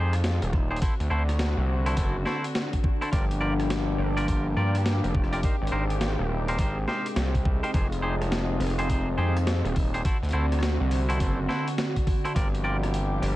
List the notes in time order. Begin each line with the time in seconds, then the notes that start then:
Already playing: F2 D#3 G#3 D#4 F4 G4 G#4 C5
0.13 cross-stick, closed hi-hat
0.24 snare, closed hi-hat
0.42 D#1, closed hi-hat
0.53 kick, cross-stick
0.71 D#4 G4 G#4 C5
0.76 closed hi-hat
0.81 D3 C4 D4 E4 F#4 A4 C5, kick, closed hi-hat
1.00 D2, closed hi-hat
1.10 D2 E4 F#4 A4 C5
1.29 cross-stick, closed hi-hat
1.39 snare, closed hi-hat
1.57 C2
1.65 A4
1.86 E4 F#4 A4 C5, closed hi-hat
1.97 F#1 E4 F#4 A4 C5, kick, closed hi-hat
2.25 E4 F#4 A4 C5, snare
2.44 closed hi-hat
2.55 snare, closed hi-hat
2.73 kick, closed hi-hat
2.84 kick
3.01 E4 F#4 A4 C5, closed hi-hat
3.12 G1 F3 A#3 F4 G4 A#4 D5, kick, closed hi-hat
3.23 A#4
3.31 closed hi-hat
3.41 F4 G4 A#4 D5
3.60 cross-stick, closed hi-hat
3.70 snare, closed hi-hat
3.84 F5
3.98 G1
4.17 F4 G4 A#4 D5 G5, closed hi-hat
4.27 F4 G4 A#4 D5, kick, closed hi-hat
4.57 G2 F4 G4 A#4 D5
4.75 cross-stick, closed hi-hat
4.86 snare, closed hi-hat
5.04 F1, closed hi-hat
5.15 kick
5.24 cross-stick
5.33 F4 G4 A#4 D5, closed hi-hat
5.43 C3 G#3 C4 D#4 G4 A#4 C5, kick, closed hi-hat
5.62 G#1
5.67 closed hi-hat
5.72 G#1 D#4 G4 A#4 C5
5.90 G#3, closed hi-hat
6.01 snare, closed hi-hat
6.19 D#1 D#5
6.48 D#4 G4 A#4 C5, closed hi-hat
6.59 G#1 D#4 G4 A#4 C5, kick, closed hi-hat
6.88 D#4 G4 A#4 C5, snare
7.06 closed hi-hat
7.16 C2, snare, closed hi-hat
7.35 kick, closed hi-hat
7.45 kick
7.63 D#4 G4 A#4 C5, closed hi-hat
7.74 F1 D#3 D#4 F4 G4 G#4 C5, kick, closed hi-hat
7.92 closed hi-hat
8.02 D#4 G4 G#4 C5
8.22 cross-stick, closed hi-hat
8.28 F4, snare, closed hi-hat
8.60 F1, open hi-hat
8.67 open hi-hat
8.70 open hi-hat
8.79 D#4 G4 G#4 C5, closed hi-hat
8.89 G4 G#4 C5, kick, closed hi-hat
9.18 F2 D#4 G4 G#4 C5
9.37 cross-stick, closed hi-hat
9.47 snare, closed hi-hat
9.65 D#1, closed hi-hat
9.76 kick, open hi-hat
9.94 D#4 G4 G#4 C5, closed hi-hat
10.05 D3 C4 E4 F#4 A4 C5, kick, closed hi-hat
10.23 D2, closed hi-hat
10.25 F#4, closed hi-hat
10.29 closed hi-hat
10.31 closed hi-hat
10.32 D2 E4 F#4 A4 C5, closed hi-hat
10.52 cross-stick, closed hi-hat
10.59 cross-stick, snare, closed hi-hat
10.80 C2
10.91 open hi-hat
10.96 D5
11.09 E4 F#4 A4 C5, closed hi-hat
11.20 F#1 E4 F#4 A4 C5, kick, closed hi-hat
11.48 E4 F#4 A4 C5, snare
11.68 closed hi-hat
11.78 snare, closed hi-hat
11.96 kick, closed hi-hat
12.07 kick, open hi-hat
12.25 E4 F#4 A4 C5, closed hi-hat
12.34 G1 F3 A#3 D4 F4 G4 A#4 D5, kick, closed hi-hat
12.55 closed hi-hat
12.64 F4 G4 A#4 D5
12.83 G4, cross-stick, closed hi-hat
12.94 closed hi-hat
13.22 G1, open hi-hat